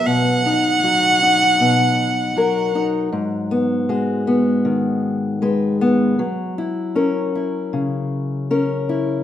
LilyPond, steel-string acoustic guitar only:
\new Staff \with { instrumentName = "Steel-string acoustic guitar" } { \time 4/4 \key gis \minor \tempo 4 = 78 << { b8 dis'8 fis'8 dis'4. ais'8 dis'8 | r8 b8 fis'8 b4. b'8 b8 | r8 e'8 ais'8 e'4. ais'8 e'8 | } \\ { <b, fis>4 fis4 b,4 fis4 | gis,4 gis4 dis4 gis4 | fis4 cis'4 cis4 cis'4 | } >> }